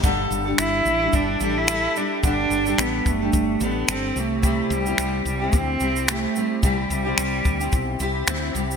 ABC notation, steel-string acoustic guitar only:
X:1
M:4/4
L:1/16
Q:"Swing 16ths" 1/4=109
K:Clyd
V:1 name="Steel-string acoustic guitar"
[G,,D,G,DGA]3 [G,DGA]4 [G,DGA]3 [G,DGA]2 [G,DGA]2 [G,DGA]2 | [G,,D,G,DGA]3 [G,DGA]4 [G,DGA]3 [G,DGA]2 [G,DGA]2 [G,CEG]2 | [C,G,CEG]3 [CEG]4 [CEG]3 [G,CEG]2 [G,CEG]2 [G,CEG]2 | [C,G,CEG]3 [CEG]4 [CEG]3 [G,CEG]2 [G,CEG]2 [G,CEG]2 |]